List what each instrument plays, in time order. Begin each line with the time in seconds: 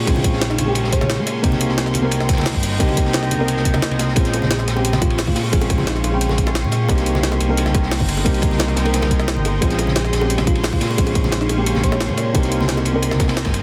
Already playing: felt piano G#3 C4 C#4 F4 G4, ambient pad F5 C6 C#6
0.06 analog synth bass A#1, felt piano G#3 C4 C#4 F4, kick, closed hi-hat, ride
0.16 high conga
0.24 kick, closed hi-hat, ride, high bongo
0.33 analog synth bass A#1, snare
0.41 snare, closed hi-hat, ride
0.50 fm electric piano D#4, snare
0.58 analog synth bass A#1, fm electric piano D#4, closed hi-hat, ride, high bongo, high conga
0.66 felt piano G#3 A#3 C#4 G4, fm electric piano G#4
0.75 closed hi-hat, ride
0.84 analog synth bass A#1, snare
0.93 fm electric piano C#5, kick, closed hi-hat, ride
1.01 snare, high conga
1.10 snare, closed hi-hat, ride
1.18 analog synth bass A#2
1.27 snare, closed hi-hat, ride
1.43 analog synth bass C2, felt piano A#3 C4 D#4 G4, ambient pad D#5 G5 A#5, kick, closed hi-hat, ride
1.52 snare, high conga
1.60 closed hi-hat, ride, high bongo
1.69 analog synth bass C2, snare
1.78 snare, closed hi-hat, ride
1.86 snare
1.94 analog synth bass C2, closed hi-hat, ride, high bongo, high conga
2.02 felt piano A#3 C4 D#4 A#4
2.11 closed hi-hat, ride
2.20 analog synth bass C2, snare
2.29 kick, snare, closed hi-hat, ride
2.33 snare, ride
2.37 snare, ride, high conga
2.41 snare, ride
2.45 snare, closed hi-hat, open hi-hat
2.55 analog synth bass G1, kick
2.63 closed hi-hat, ride
2.79 analog synth bass C2, felt piano A#3 C4 D#4 G4, kick, closed hi-hat, ride
2.89 high conga
2.97 kick, closed hi-hat, ride, high bongo
3.05 analog synth bass C2, snare
3.13 snare, closed hi-hat, ride
3.23 snare
3.31 analog synth bass C2, closed hi-hat, ride, high bongo, high conga
3.39 felt piano A#3 C4 D#4 A#4
3.48 closed hi-hat, ride
3.57 analog synth bass C2, snare
3.65 kick, closed hi-hat, ride
3.74 snare, ride, high conga
3.82 snare, closed hi-hat
3.91 analog synth bass C2, ride
3.99 snare, closed hi-hat, ride
4.09 snare
4.15 analog synth bass A#1, felt piano G#3 C4 C#4 F4, ambient pad F5 C6 C#6, kick, closed hi-hat, ride, high bongo
4.25 snare, closed hi-hat
4.33 closed hi-hat, ride, high bongo
4.42 analog synth bass A#1, snare, high conga
4.51 fm electric piano G#4, snare, closed hi-hat, ride
4.59 snare, high bongo
4.68 analog synth bass A#1, snare, closed hi-hat, ride
4.75 felt piano G#3 C4 C#4 G4, high bongo
4.85 closed hi-hat, ride
4.93 analog synth bass A#1, snare, ride, high conga
5.01 fm electric piano F4, kick, closed hi-hat, high bongo
5.10 ride
5.18 snare, closed hi-hat, open hi-hat, high bongo
5.27 analog synth bass A#2, fm electric piano F4, kick, high conga
5.36 fm electric piano F4, snare, closed hi-hat, ride
5.44 high bongo
5.52 analog synth bass A#1, felt piano G#3 C4 C#4 F4, fm electric piano G#4, kick, closed hi-hat, ride
5.61 fm electric piano G#4, closed hi-hat, high bongo
5.70 kick, closed hi-hat, ride
5.78 analog synth bass A#1, snare, high conga
5.87 fm electric piano D#4, snare, closed hi-hat, ride, high bongo
5.96 snare
6.04 analog synth bass A#1, closed hi-hat, ride, high bongo
6.12 felt piano G#3 C4 C#4 G5
6.21 closed hi-hat, ride
6.29 analog synth bass A#1, snare, high bongo, high conga
6.38 kick, closed hi-hat, ride
6.47 fm electric piano G#4, snare, high bongo
6.55 snare, closed hi-hat, ride
6.64 analog synth bass A#2, high conga
6.72 snare, closed hi-hat, ride, high bongo
6.88 analog synth bass C2, felt piano A#3 C4 D#4 G4, ambient pad D#5 G5 A#5 C6, kick, closed hi-hat, ride, high bongo
6.98 snare, closed hi-hat
7.06 closed hi-hat, ride
7.15 analog synth bass C2, snare, high bongo, high conga
7.23 snare, closed hi-hat, ride
7.32 snare, high bongo
7.41 analog synth bass C2, closed hi-hat, ride
7.48 felt piano A#3 C4 D#4 A#4
7.57 closed hi-hat, ride, high bongo
7.66 analog synth bass C2, snare, high conga
7.75 kick, closed hi-hat, ride, high bongo
7.83 snare
7.92 snare, closed hi-hat, open hi-hat
8.00 analog synth bass G1, kick, high bongo, high conga
8.09 closed hi-hat, ride
8.17 high bongo
8.24 analog synth bass C2, felt piano A#3 C4 D#4 G4, kick, closed hi-hat, ride
8.34 closed hi-hat
8.42 kick, closed hi-hat, ride, high bongo
8.51 analog synth bass C2, snare, high conga
8.59 snare, closed hi-hat, ride, high bongo
8.68 snare
8.76 analog synth bass C2, snare, closed hi-hat, ride
8.84 felt piano A#3 C4 D#4 A#4, ride, high bongo
8.94 snare, closed hi-hat, ride
9.02 analog synth bass C2, snare, ride, high bongo, high conga
9.11 kick, closed hi-hat, ride
9.20 snare
9.28 snare, closed hi-hat, high bongo
9.36 analog synth bass G1, high conga
9.45 closed hi-hat, ride, high bongo
9.61 analog synth bass A#1, felt piano G#3 C4 C#4 F4, ambient pad F5 C#6, kick, closed hi-hat, ride, high bongo
9.70 snare, closed hi-hat
9.78 closed hi-hat, ride, high bongo
9.87 analog synth bass A#1, snare, high conga
9.95 fm electric piano G#4, snare, closed hi-hat, ride
10.05 snare, high bongo
10.13 analog synth bass A#1, snare, closed hi-hat, ride
10.20 felt piano G#3 C4 C#4 G4, high bongo
10.30 closed hi-hat, ride
10.38 analog synth bass A#1, snare, ride, high conga
10.47 fm electric piano F4, kick, closed hi-hat, high bongo
10.55 ride
10.64 snare, closed hi-hat, open hi-hat, high bongo
10.73 analog synth bass A#2, fm electric piano F4, kick, high conga
10.81 fm electric piano F4, snare, closed hi-hat, ride
10.91 high bongo
10.97 analog synth bass A#1, felt piano G#3 C4 C#4 F4, kick, closed hi-hat, ride
11.07 closed hi-hat, high bongo
11.15 kick, closed hi-hat, ride
11.23 analog synth bass A#1, snare, high conga
11.32 snare, closed hi-hat, ride, high bongo
11.41 fm electric piano D#4, snare
11.49 analog synth bass A#1, fm electric piano D#4, closed hi-hat, ride, high bongo
11.57 felt piano G#3 A#3 C#4 G4, fm electric piano G#4
11.66 closed hi-hat, ride
11.75 analog synth bass A#1, snare, high bongo, high conga
11.84 fm electric piano C#5, kick, closed hi-hat, ride
11.92 snare, high bongo
12.00 snare, closed hi-hat, ride
12.09 analog synth bass A#2, high conga
12.17 snare, closed hi-hat, ride, high bongo
12.34 analog synth bass C2, felt piano A#3 C4 D#4 G4, ambient pad D#5 G5 A#5, kick, closed hi-hat, ride, high bongo
12.43 snare, closed hi-hat
12.52 closed hi-hat, ride
12.60 analog synth bass C2, snare, high bongo, high conga
12.68 snare, closed hi-hat, ride
12.77 snare, high bongo
12.85 analog synth bass C2, closed hi-hat, ride
12.93 felt piano A#3 C4 D#4 A#4
13.02 closed hi-hat, ride, high bongo
13.11 analog synth bass C2, snare, high conga
13.20 kick, snare, closed hi-hat, ride, high bongo
13.28 snare, ride
13.36 snare, closed hi-hat, ride
13.45 analog synth bass G1, kick, snare, ride, high bongo, high conga
13.54 closed hi-hat, ride